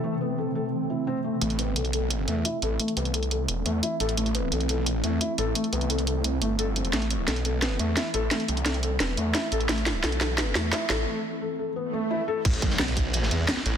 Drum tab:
CC |----------------|----------------|----------------|----------------|
RD |----------------|----------------|----------------|----------------|
HH |----------------|xxx-xxx-x-x-x-x-|xxxxxxx-x-x-x-xx|xxx-xxx-x-x-x-x-|
SD |----------------|----------------|----------------|----------------|
BD |----------------|----------------|----------------|----------------|

CC |----------------|----------------|----------------|----------------|
RD |----------------|----------------|----------------|----------------|
HH |xxxxxxx-x-x-x-xx|xxx-xxx-x-x-x-x-|xxxxxxx-x-x-x-xx|xxx-xxx-x-x-x-x-|
SD |----------------|o---o---o---o---|o---o---o---o---|o-o-o-o-o-o-o-o-|
BD |----------------|----------------|----------------|----------------|

CC |----------------|x---------------|
RD |----------------|x-x-x-x-x-x-x-x-|
HH |----------------|xxx-xxx-x-x-x-x-|
SD |----------------|---oo----o--oo--|
BD |----------------|o-o---o---------|